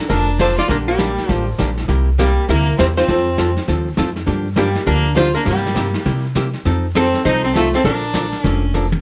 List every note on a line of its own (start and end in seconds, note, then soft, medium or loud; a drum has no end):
0.00 0.11 A4 medium
0.09 0.57 F1 medium
0.09 0.29 D3 medium
0.09 0.29 F3 soft
0.09 0.30 A#3 medium
0.09 0.37 D4 medium
0.09 0.30 D4 soft
0.09 0.38 D4 medium
0.09 0.30 A4 medium
0.09 0.40 A#4 medium
0.09 brush sweep soft
0.09 kick soft
0.09 snare soft
0.39 0.50 D3 medium
0.39 0.51 F3 medium
0.39 0.51 A#3 medium
0.39 0.56 D4 medium
0.39 0.51 D4 medium
0.39 0.57 F4 medium
0.39 0.51 A4 medium
0.39 0.57 C5 medium
0.39 kick soft
0.39 snare medium
0.39 hi-hat pedal medium
0.57 0.68 F4 medium
0.57 0.69 F4 medium
0.57 0.70 D5 loud
0.57 snare soft
0.68 1.17 A#1 medium
0.68 0.89 D3 medium
0.68 0.89 G3 medium
0.68 0.89 A#3 medium
0.68 0.78 A#3 medium
0.68 0.89 D4 medium
0.68 0.76 D4 medium
0.68 0.89 G4 medium
0.68 0.76 A#4 medium
0.68 brush sweep soft
0.68 kick soft
0.68 snare soft
0.88 1.31 G3 medium
0.88 1.44 A#3 medium
0.88 1.31 G4 medium
0.98 1.10 D3 medium
0.98 1.10 G3 medium
0.98 1.10 A#3 medium
0.98 1.10 D4 medium
0.98 1.10 G4 medium
0.98 kick soft
0.98 snare medium
0.98 hi-hat pedal medium
1.18 snare soft
1.29 1.54 A1 medium
1.29 1.49 D3 medium
1.29 1.44 F3 medium
1.29 1.49 G3 medium
1.29 1.49 A#3 medium
1.29 1.49 D4 medium
1.29 1.43 F4 medium
1.29 1.49 G4 medium
1.29 brush sweep soft
1.29 kick soft
1.29 snare soft
1.59 1.84 A#1 medium
1.59 1.70 D3 medium
1.59 1.70 G3 medium
1.59 1.70 A#3 medium
1.59 1.70 D4 medium
1.59 1.70 G4 medium
1.59 kick soft
1.59 snare medium
1.59 hi-hat pedal medium
1.77 snare soft
1.88 2.36 C2 medium
1.88 2.08 C3 medium
1.88 2.08 G3 medium
1.88 2.09 A#3 medium
1.88 2.09 E4 medium
1.88 2.09 G4 medium
1.88 brush sweep soft
1.88 kick soft
1.88 snare soft
2.19 2.30 C3 medium
2.19 2.30 G3 medium
2.19 2.48 G3 medium
2.19 2.30 A#3 medium
2.19 2.47 A#3 medium
2.19 2.30 E4 medium
2.19 2.30 G4 medium
2.19 2.47 G4 medium
2.19 kick soft
2.19 snare medium
2.19 hi-hat pedal medium
2.49 2.74 D2 medium
2.49 2.68 C3 medium
2.49 2.69 G3 soft
2.49 2.69 A#3 soft
2.49 2.77 A#3 medium
2.49 2.69 E4 medium
2.49 2.77 E4 medium
2.49 2.69 G4 medium
2.49 2.77 A#4 medium
2.49 brush sweep soft
2.49 kick soft
2.49 snare soft
2.78 3.04 E2 medium
2.78 2.89 C3 medium
2.78 2.90 G3 medium
2.78 2.90 A#3 medium
2.78 2.86 C4 medium
2.78 2.84 E4 medium
2.78 2.90 E4 medium
2.78 2.90 G4 medium
2.78 2.84 C5 medium
2.78 kick soft
2.78 snare medium
2.78 hi-hat pedal medium
2.97 3.52 C4 medium
2.97 3.53 F4 medium
2.97 3.52 C5 medium
2.97 snare soft
3.08 3.56 F2 medium
3.08 3.28 F3 medium
3.08 3.28 C4 medium
3.08 3.28 F4 medium
3.08 3.29 A4 medium
3.08 brush sweep soft
3.08 kick soft
3.08 snare soft
3.38 3.49 F3 medium
3.38 3.49 C4 medium
3.38 3.49 F4 medium
3.38 3.49 A4 medium
3.38 kick soft
3.38 snare medium
3.38 hi-hat pedal medium
3.56 snare soft
3.68 3.93 D#2 medium
3.68 3.88 F3 medium
3.68 3.88 C4 soft
3.68 3.88 F4 soft
3.68 3.88 A4 medium
3.68 brush sweep soft
3.68 kick soft
3.68 snare soft
3.97 4.23 F2 medium
3.97 4.08 F3 medium
3.97 4.09 C4 medium
3.97 4.09 F4 medium
3.97 4.09 A4 medium
3.97 kick soft
3.97 snare medium
3.97 hi-hat pedal medium
4.16 snare soft
4.26 4.75 G2 medium
4.26 4.47 D3 medium
4.26 4.47 F3 medium
4.26 4.47 A#3 medium
4.26 4.47 D4 medium
4.26 4.47 G4 medium
4.26 brush sweep soft
4.26 kick soft
4.26 snare soft
4.56 4.67 D3 medium
4.56 4.68 F3 medium
4.56 4.84 G3 medium
4.56 4.68 A#3 medium
4.56 4.85 A#3 medium
4.56 4.68 D4 medium
4.56 4.68 G4 medium
4.56 4.85 G4 medium
4.56 kick soft
4.56 snare medium
4.56 hi-hat pedal medium
4.75 snare soft
4.86 5.34 D2 medium
4.86 5.06 D3 soft
4.86 5.07 F3 medium
4.86 5.14 A#3 medium
4.86 5.07 A#3 medium
4.86 5.15 D4 medium
4.86 5.07 D4 medium
4.86 5.07 G4 medium
4.86 5.16 A#4 medium
4.86 brush sweep soft
4.86 kick soft
4.86 snare soft
5.15 5.27 D3 medium
5.15 5.27 F3 medium
5.15 5.27 A#3 medium
5.15 5.27 D4 medium
5.15 5.33 F4 medium
5.15 5.34 F4 medium
5.15 5.28 G4 medium
5.15 5.34 C5 medium
5.15 kick soft
5.15 snare medium
5.15 hi-hat pedal medium
5.35 5.46 A#3 medium
5.35 5.46 D4 medium
5.35 5.46 A#4 medium
5.45 5.94 G2 medium
5.45 5.66 C3 medium
5.45 5.66 G3 medium
5.45 6.02 G3 medium
5.45 5.66 A#3 medium
5.45 6.02 A#3 medium
5.45 5.66 E4 medium
5.45 5.66 G4 medium
5.45 6.02 G4 medium
5.45 brush sweep soft
5.45 kick soft
5.45 snare soft
5.56 snare soft
5.66 snare soft
5.75 5.87 C3 medium
5.75 5.87 G3 medium
5.75 5.87 A#3 medium
5.75 5.87 E4 medium
5.75 5.87 G4 medium
5.75 kick soft
5.75 snare medium
5.75 hi-hat pedal soft
5.94 snare soft
6.05 6.26 C3 medium
6.05 6.54 C3 medium
6.05 6.26 G3 medium
6.05 6.26 A#3 medium
6.05 6.26 E4 medium
6.05 6.26 G4 medium
6.05 brush sweep soft
6.05 kick soft
6.05 snare soft
6.35 6.47 C3 medium
6.35 6.47 G3 medium
6.35 6.47 A#3 medium
6.35 6.47 E4 medium
6.35 6.47 G4 medium
6.35 kick soft
6.35 snare medium
6.35 hi-hat pedal medium
6.53 snare soft
6.65 7.13 F2 medium
6.65 6.85 F3 medium
6.65 6.85 C4 medium
6.65 6.86 D#4 medium
6.65 6.86 A4 medium
6.65 brush sweep soft
6.65 kick soft
6.65 snare soft
6.95 7.06 F3 medium
6.95 7.07 C4 medium
6.95 7.24 C4 medium
6.95 7.06 D#4 medium
6.95 7.07 A4 medium
6.95 7.24 A4 medium
6.95 kick soft
6.95 snare medium
6.95 hi-hat pedal medium
7.14 snare soft
7.25 7.73 C2 medium
7.25 7.45 F3 medium
7.25 7.45 C4 medium
7.25 7.42 D#4 medium
7.25 7.45 D#4 medium
7.25 7.46 D#4 medium
7.25 7.45 A4 medium
7.25 7.45 C5 loud
7.25 brush sweep soft
7.25 kick soft
7.25 snare soft
7.44 7.54 C4 medium
7.44 7.55 A4 medium
7.55 7.66 F3 medium
7.55 7.72 A3 medium
7.55 7.73 A3 medium
7.55 7.66 C4 medium
7.55 7.67 D#4 medium
7.55 7.75 F4 medium
7.55 7.67 A4 medium
7.55 kick soft
7.55 snare medium
7.55 hi-hat pedal medium
7.73 7.84 C4 medium
7.73 7.85 C4 medium
7.73 7.84 A4 medium
7.73 snare soft
7.84 8.32 A#1 medium
7.84 8.04 D3 medium
7.84 8.05 F3 medium
7.84 8.05 A#3 medium
7.84 8.05 D4 medium
7.84 8.71 D4 medium
7.84 8.43 D4 medium
7.84 8.05 A4 medium
7.84 8.43 A#4 medium
7.84 brush sweep soft
7.84 kick soft
7.84 snare soft
8.13 8.25 D3 medium
8.13 8.25 F3 medium
8.13 8.25 A#3 medium
8.13 8.26 D4 medium
8.13 8.26 A4 medium
8.13 kick soft
8.13 snare medium
8.13 hi-hat pedal medium
8.32 snare soft
8.43 8.92 F1 medium
8.43 8.64 D3 medium
8.43 8.64 F3 soft
8.43 8.65 A#3 soft
8.43 8.71 C#4 medium
8.43 8.65 D4 medium
8.43 8.70 A4 medium
8.43 8.65 A4 medium
8.43 brush sweep soft
8.43 kick soft
8.43 snare soft
8.74 8.85 D3 medium
8.74 8.85 F3 medium
8.74 8.85 A#3 medium
8.74 8.86 D4 medium
8.74 8.86 A4 medium
8.74 hi-hat pedal medium
8.92 high tom medium